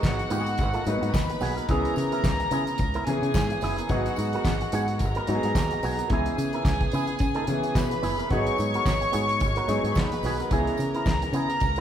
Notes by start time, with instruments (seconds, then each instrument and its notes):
Already playing: grand piano F#3 B3 D#4 G#4, string section F#4 F#5
0.03 fingered electric bass G#1, kick, snare, clap, tambourine
0.19 muted clean electric guitar stroke, closed hi-hat
0.30 fingered electric bass G#2, clean electric guitar B3 F#4 G#4, closed hi-hat, tambourine
0.46 muted clean electric guitar stroke, closed hi-hat
0.58 fingered electric bass G#1, muted clean electric guitar stroke, kick, closed hi-hat, tambourine
0.74 clean electric guitar B3 F#4 A#4, closed hi-hat
0.85 fingered electric bass G#2, grand piano F#3 A#3 D#4 B4, muted clean electric guitar stroke, closed hi-hat, tambourine
0.94 grand piano B3
1.01 fingered electric bass G#2, muted clean electric guitar stroke, closed hi-hat
1.12 fingered electric bass D#2, string section B4 B5, muted clean electric guitar stroke, kick, snare, clap, tambourine
1.29 muted clean electric guitar stroke, closed hi-hat
1.41 fingered electric bass B1, clean electric guitar B3 F#4 G#4, snare, open hi-hat, tambourine
1.57 clean electric guitar B3 F#4 A#4, closed hi-hat
1.68 fingered electric bass C#2, grand piano E3 B3 C#4 G#4, clean electric guitar B3 E4 G#4, string section A#4 A#5, kick, closed hi-hat, tambourine
1.85 closed hi-hat
1.96 fingered electric bass C#3, muted clean electric guitar stroke, closed hi-hat, tambourine
2.12 clean electric guitar B3 E4 A#4, closed hi-hat
2.24 fingered electric bass C#2, kick, snare, clap, tambourine
2.40 muted clean electric guitar stroke, closed hi-hat
2.51 fingered electric bass C#3, clean electric guitar B3 E4 G#4, closed hi-hat, tambourine
2.67 muted clean electric guitar stroke, closed hi-hat
2.78 fingered electric bass C#2, muted clean electric guitar stroke, kick, closed hi-hat, tambourine
2.94 clean electric guitar B3 E4 A#4, closed hi-hat
3.07 fingered electric bass C#3, grand piano E3 B3 C#4 G#4, string section G#4 G#5, muted clean electric guitar stroke, closed hi-hat
3.22 fingered electric bass C#3, muted clean electric guitar stroke, closed hi-hat
3.34 fingered electric bass G#2, muted clean electric guitar stroke, kick, snare, clap, tambourine
3.50 muted clean electric guitar stroke, closed hi-hat
3.61 fingered electric bass F#1, clean electric guitar B3 E4 G#4, snare, open hi-hat, tambourine
3.78 clean electric guitar B3 E4 A#4, closed hi-hat
3.89 fingered electric bass G#1, grand piano F#3 B3 D#4 G#4, clean electric guitar B3 F#4 G#4, string section F#4 F#5, kick, closed hi-hat, tambourine
4.06 closed hi-hat
4.16 fingered electric bass G#2, muted clean electric guitar stroke, closed hi-hat, tambourine
4.33 clean electric guitar B3 F#4 A#4, closed hi-hat
4.45 fingered electric bass G#1, kick, snare, clap, tambourine
4.61 muted clean electric guitar stroke, closed hi-hat
4.72 fingered electric bass G#2, clean electric guitar B3 F#4 G#4, closed hi-hat, tambourine
4.88 muted clean electric guitar stroke, closed hi-hat
4.99 fingered electric bass G#1, string section A#4 A#5, muted clean electric guitar stroke, kick, closed hi-hat, tambourine
5.15 clean electric guitar B3 F#4 A#4, closed hi-hat
5.27 fingered electric bass G#2, grand piano F#3 B3 D#4 F#4, muted clean electric guitar stroke, closed hi-hat, tambourine
5.35 grand piano G#4
5.43 fingered electric bass G#2, muted clean electric guitar stroke, closed hi-hat
5.55 fingered electric bass D#2, muted clean electric guitar stroke, kick, snare, clap, tambourine
5.71 muted clean electric guitar stroke, closed hi-hat
5.83 fingered electric bass B1, clean electric guitar B3 F#4 G#4, open hi-hat, tambourine
5.99 clean electric guitar B3 F#4 A#4, closed hi-hat
6.09 fingered electric bass C#2, grand piano E3 B3 C#4 G#4, clean electric guitar B3 E4 G#4, string section G#4 G#5, kick, closed hi-hat
6.26 closed hi-hat
6.38 fingered electric bass C#3, muted clean electric guitar stroke, closed hi-hat, tambourine
6.53 clean electric guitar B3 E4 A#4, closed hi-hat
6.65 fingered electric bass C#2, kick, snare, clap, tambourine
6.81 muted clean electric guitar stroke, kick, closed hi-hat
6.92 fingered electric bass C#3, clean electric guitar B3 E4 G#4, closed hi-hat, tambourine
7.07 muted clean electric guitar stroke, closed hi-hat
7.19 fingered electric bass C#3, muted clean electric guitar stroke, kick, closed hi-hat, tambourine
7.35 clean electric guitar B3 E4 A#4, closed hi-hat
7.47 fingered electric bass C#3, grand piano E3 B3 C#4 G#4, muted clean electric guitar stroke, closed hi-hat, tambourine
7.63 muted clean electric guitar stroke, closed hi-hat
7.75 fingered electric bass B2, string section B4 B5, muted clean electric guitar stroke, kick, snare, clap, tambourine
7.91 muted clean electric guitar stroke, closed hi-hat
8.03 fingered electric bass F#1, clean electric guitar B3 E4 G#4, snare, open hi-hat, tambourine
8.19 clean electric guitar B3 E4 A#4, closed hi-hat
8.31 fingered electric bass G#1, grand piano F#3 B3 D#4 G#4, clean electric guitar B3 F#4 G#4, string section C#5 C#6, kick, closed hi-hat
8.47 closed hi-hat
8.58 fingered electric bass G#2, muted clean electric guitar stroke, closed hi-hat, tambourine
8.74 clean electric guitar B3 F#4 A#4, closed hi-hat
8.86 fingered electric bass G#1, kick, snare, clap, tambourine
9.01 muted clean electric guitar stroke, closed hi-hat
9.12 fingered electric bass G#2, clean electric guitar B3 F#4 G#4, closed hi-hat, tambourine
9.28 muted clean electric guitar stroke, closed hi-hat
9.40 fingered electric bass G#1, muted clean electric guitar stroke, kick, closed hi-hat, tambourine
9.56 clean electric guitar B3 F#4 A#4, closed hi-hat
9.68 fingered electric bass G#2, grand piano F#3 B3 D#4 G#4, closed hi-hat, tambourine
9.84 fingered electric bass G#2, muted clean electric guitar stroke, closed hi-hat
9.95 fingered electric bass D#2, string section B4 B5, muted clean electric guitar stroke, kick, snare, clap, tambourine
10.12 muted clean electric guitar stroke, closed hi-hat
10.23 fingered electric bass B1, clean electric guitar B3 F#4 G#4, snare, open hi-hat, tambourine
10.40 clean electric guitar B3 F#4 A#4, closed hi-hat
10.51 fingered electric bass C#2, grand piano E3 B3 C#4 G#4, clean electric guitar B3 E4 G#4, string section A#4 A#5, kick, closed hi-hat, tambourine
10.67 closed hi-hat
10.78 fingered electric bass C#3, muted clean electric guitar stroke, closed hi-hat, tambourine
10.95 clean electric guitar B3 E4 A#4, closed hi-hat
11.06 fingered electric bass C#2, kick, snare, clap, tambourine
11.22 muted clean electric guitar stroke, closed hi-hat
11.33 fingered electric bass C#3, clean electric guitar B3 E4 G#4, closed hi-hat, tambourine
11.50 muted clean electric guitar stroke, closed hi-hat
11.60 fingered electric bass C#2, muted clean electric guitar stroke, kick, closed hi-hat, tambourine
11.76 closed hi-hat